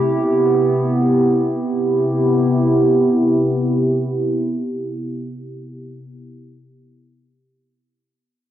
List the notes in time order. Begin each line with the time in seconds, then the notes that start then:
Already playing: C3 E4 G4
0.07 B3
1.85 C3 B3 E4 G4